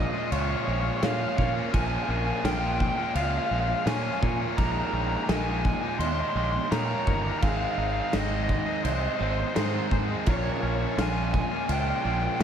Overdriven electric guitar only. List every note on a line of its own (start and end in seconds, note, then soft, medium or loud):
0.01 0.10 D#5 medium
0.10 0.18 D#5 medium
0.18 0.25 D#5 medium
0.26 0.32 D#5 medium
0.32 0.40 C#5 medium
0.40 0.48 C#5 medium
0.48 0.56 C#5 medium
0.57 0.63 C#5 medium
0.63 0.71 C#5 medium
0.73 0.80 C#5 medium
0.80 0.88 C#5 medium
0.89 0.97 C#5 medium
0.97 1.04 C#5 medium
1.04 1.12 F5 medium
1.13 1.20 F5 medium
1.21 1.28 F5 medium
1.29 1.36 F5 medium
1.37 1.44 F5 medium
1.45 1.53 F5 medium
1.74 1.80 G#5 loud
1.80 1.87 G#5 medium
1.88 1.95 G#5 medium
1.96 2.03 G#5 medium
2.03 2.10 G#5 loud
2.11 2.17 G#5 medium
2.18 2.24 G#5 medium
2.25 2.32 G#5 medium
2.33 2.39 G#5 medium
2.40 2.45 G#5 medium
2.45 2.52 G5 loud
2.53 2.59 G5 medium
2.60 2.67 G5 medium
2.67 2.73 G5 medium
2.74 2.81 G5 loud
2.82 2.89 G5 medium
2.89 2.96 G5 medium
2.96 3.03 G5 medium
3.03 3.10 G5 medium
3.10 3.15 G5 medium
3.16 3.23 F5 medium
3.23 3.30 F5 medium
3.30 3.37 F5 medium
3.38 3.44 F5 medium
3.45 3.52 F5 medium
3.52 3.59 F5 medium
3.60 3.67 F5 medium
3.67 3.74 F5 medium
3.74 3.82 F5 medium
3.82 3.87 F5 medium
3.87 3.95 G#5 medium
3.96 4.03 G#5 medium
4.03 4.11 G#5 medium
4.11 4.20 G#5 medium
4.20 4.28 G#5 medium
4.29 4.37 G#5 medium
4.57 4.64 A#5 loud
4.64 4.72 A#5 medium
4.72 4.79 A#5 medium
4.79 4.86 A#5 medium
4.87 4.94 A#5 loud
4.94 5.01 A#5 medium
5.02 5.08 A#5 medium
5.08 5.16 A#5 medium
5.16 5.23 A#5 medium
5.24 5.29 A#5 medium
5.29 5.36 G#5 loud
5.37 5.43 G#5 medium
5.44 5.51 G#5 medium
5.51 5.59 G#5 medium
5.59 5.66 G#5 medium
5.66 5.73 G#5 medium
5.74 5.80 G#5 loud
5.81 5.88 G#5 medium
5.88 5.95 G#5 medium
5.95 5.99 G#5 medium
5.99 6.07 C6 loud
6.07 6.14 C6 medium
6.15 6.21 C6 loud
6.21 6.29 C6 medium
6.30 6.37 C6 loud
6.37 6.44 C6 medium
6.44 6.51 C6 loud
6.52 6.59 C6 medium
6.59 6.67 C6 medium
6.71 6.78 A#5 loud
6.79 6.86 A#5 medium
6.86 6.93 A#5 loud
6.93 7.00 A#5 medium
7.00 7.07 A#5 loud
7.08 7.14 A#5 medium
7.15 7.22 A#5 loud
7.22 7.30 A#5 medium
7.31 7.38 A#5 loud
7.39 7.49 F5 loud
7.39 7.42 A#5 medium
7.49 7.56 F5 medium
7.57 7.64 F5 medium
7.64 7.71 F5 medium
7.71 7.78 F5 loud
7.79 7.86 F5 medium
7.88 7.92 F5 medium
7.93 8.00 F5 medium
8.02 8.08 F5 medium
8.09 8.16 F5 medium
8.14 8.20 D#5 loud
8.20 8.27 D#5 medium
8.28 8.36 D#5 medium
8.36 8.43 D#5 medium
8.44 8.50 D#5 medium
8.51 8.58 D#5 medium
8.59 8.65 D#5 medium
8.66 8.73 D#5 medium
8.73 8.81 D#5 medium
8.84 8.92 C5 medium
8.92 8.99 C5 medium
9.00 9.08 C5 medium
9.09 9.16 C5 medium
9.16 9.23 C5 medium
9.23 9.30 C5 medium
9.30 9.38 C5 medium
9.40 9.48 C5 medium
9.48 9.55 C5 medium
9.55 9.63 C5 medium
9.63 9.71 C5 medium
9.73 9.77 C5 medium
9.78 9.86 C5 medium
10.30 10.36 C#5 medium
10.37 10.44 C#5 medium
10.45 10.52 C#5 medium
10.53 10.60 C#5 medium
10.61 10.66 C#5 medium
10.66 10.74 C#5 medium
10.75 10.81 C#5 medium
10.82 10.88 C#5 medium
10.89 10.96 C#5 medium
11.01 11.09 G#5 loud
11.10 11.17 G#5 medium
11.17 11.25 G#5 medium
11.25 11.33 G#5 medium
11.33 11.41 G#5 medium
11.41 11.48 G#5 medium
11.49 11.56 G#5 medium
11.56 11.64 G#5 medium
11.66 11.72 G#5 medium
11.72 11.80 G5 loud
11.80 11.88 G5 medium
11.88 11.95 G5 medium
11.96 12.03 G5 medium
12.04 12.12 G5 medium
12.12 12.18 G5 medium
12.18 12.26 G5 medium
12.27 12.35 G5 medium
12.36 12.42 G5 medium